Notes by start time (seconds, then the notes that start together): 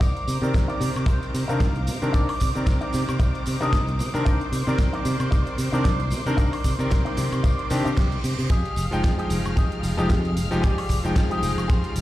0.00 C2 D#4 A#4 C5 D5 A#5 D6, kick, closed hi-hat, tambourine, shaker
0.17 closed hi-hat
0.28 C3, open hi-hat, tambourine, shaker
0.42 C3 D#3 C4 A#4 D5, closed hi-hat, tambourine, shaker
0.54 C2, kick, snare, closed hi-hat, tambourine, shaker
0.68 D#4 A#4 D5, closed hi-hat, tambourine
0.81 C3, open hi-hat, tambourine, shaker
0.95 C3, closed hi-hat, tambourine, high woodblock, shaker
1.06 C2 D#4 A#4 C5, kick, closed hi-hat, tambourine, shaker
1.22 closed hi-hat, tambourine
1.34 C3, open hi-hat, tambourine, shaker
1.48 C3 D#3 C4 D4 D#4 A#4 F5, closed hi-hat, tambourine, shaker
1.60 C2, kick, snare, closed hi-hat, tambourine, shaker
1.75 closed hi-hat, tambourine
1.87 C3, open hi-hat, tambourine, shaker
2.02 C3 D#3 C4 D4 A#4, closed hi-hat, tambourine, shaker
2.13 C2 D#4 A#4 D5, kick, closed hi-hat, tambourine, shaker
2.29 open hi-hat, tambourine, high woodblock
2.40 C3, kick, open hi-hat, tambourine, shaker
2.55 C3 D#3 C4 A#4 D5, tambourine, shaker
2.66 C2, kick, snare, closed hi-hat, tambourine, shaker
2.81 D#4 A#4 D5, closed hi-hat, tambourine
2.93 C3, open hi-hat, tambourine, shaker
3.08 C3, closed hi-hat, tambourine, high woodblock, shaker
3.19 C2 D#4 A#4 D5, kick, closed hi-hat, tambourine, shaker
3.34 closed hi-hat, tambourine
3.46 C3, open hi-hat, tambourine, shaker
3.61 C3 D#3 C4 D4 D#4 A#4 D#5, closed hi-hat, tambourine, shaker
3.73 C2, kick, snare, closed hi-hat, tambourine, shaker
3.87 closed hi-hat, tambourine
3.99 C3, open hi-hat, tambourine, shaker
4.14 C3 D#3 C4 D4 A#4, closed hi-hat, tambourine, shaker
4.25 C2 D#4 A#4 D5 C6, kick, closed hi-hat, tambourine, shaker
4.40 closed hi-hat, tambourine
4.52 C3, open hi-hat, tambourine, shaker
4.67 C3 D#3 C4 A#4 D5, closed hi-hat, tambourine, shaker
4.78 C2, kick, snare, closed hi-hat, tambourine, shaker
4.93 D#4 A#4 D5, closed hi-hat, tambourine
5.05 C3, open hi-hat, tambourine, shaker
5.20 C3, closed hi-hat, tambourine, high woodblock, shaker
5.31 C2 D#4 A#4 D5, kick, closed hi-hat, tambourine, shaker
5.46 closed hi-hat, tambourine
5.58 C3, open hi-hat, tambourine, shaker
5.72 C3 D#3 C4 D4 D#4 A#4 D5, closed hi-hat, tambourine, shaker
5.85 C2, kick, snare, closed hi-hat, tambourine, shaker
6.00 closed hi-hat, tambourine
6.10 C3, open hi-hat, tambourine, shaker
6.26 C3 D#3 C4 D4 A#4, closed hi-hat, tambourine, shaker
6.37 C2 D#4 A#4 D5, kick, closed hi-hat, tambourine, shaker
6.52 open hi-hat, tambourine, high woodblock
6.64 C3, kick, open hi-hat, tambourine, shaker
6.79 C3 D#3 C4 A#4 D5, closed hi-hat, tambourine, shaker
6.91 C2, kick, snare, closed hi-hat, tambourine, shaker
7.05 D#4 A#4 D5, closed hi-hat, tambourine
7.17 C3, snare, open hi-hat, tambourine, shaker
7.32 C3, closed hi-hat, tambourine, high woodblock, shaker
7.43 C2 D#4 A#4 D5, kick, closed hi-hat, tambourine, reverse cymbal, shaker
7.58 closed hi-hat, tambourine
7.70 C3 D#3 C4 D4 G4, open hi-hat, tambourine, shaker
7.85 C3 D#4 A#4 D5, closed hi-hat, tambourine, shaker
7.97 C2, kick, snare, closed hi-hat, tambourine, shaker
8.11 closed hi-hat, tambourine
8.24 C3, open hi-hat, tambourine, shaker
8.39 C3, closed hi-hat, tambourine, shaker
8.50 F2 G#3 G4 G#4 D#5 F5 G5 F6, kick, closed hi-hat, tambourine, shaker
8.65 closed hi-hat, tambourine
8.76 F1, open hi-hat, tambourine, shaker
8.91 F1 F3 G#3 D#4 G5, closed hi-hat, tambourine, shaker
9.03 F2, kick, snare, closed hi-hat, tambourine, shaker
9.18 G4 G#4 D#5, closed hi-hat, tambourine
9.30 F1, open hi-hat, tambourine, shaker
9.45 F1, closed hi-hat, tambourine, high woodblock, shaker
9.56 F2 G4 G#4 D#5, kick, closed hi-hat, tambourine, shaker
9.71 closed hi-hat, tambourine
9.83 F1, open hi-hat, tambourine, shaker
9.97 F1 F3 G#3 D#4 G4 G#4 D#5, closed hi-hat, tambourine, shaker
10.10 F2, kick, snare, closed hi-hat, tambourine, shaker
10.25 closed hi-hat, tambourine
10.36 F1, open hi-hat, tambourine, shaker
10.51 F1 F3 G#3 D#4 G4, closed hi-hat, tambourine, shaker
10.62 F2 G4 G#4 D5, kick, closed hi-hat, tambourine, shaker
10.78 open hi-hat, tambourine, high woodblock
10.89 F1, kick, open hi-hat, tambourine, shaker
11.04 F1 F3 G#3 D#4 G5, closed hi-hat, tambourine, shaker
11.16 F2, kick, snare, closed hi-hat, tambourine, shaker
11.30 G4 G#4 D#5, closed hi-hat, tambourine
11.43 F1, open hi-hat, tambourine, shaker
11.58 F1, closed hi-hat, tambourine, high woodblock, shaker
11.68 F2 G4 G#4 C5, kick, closed hi-hat, tambourine, shaker
11.84 closed hi-hat, tambourine
11.96 F1, open hi-hat, tambourine, shaker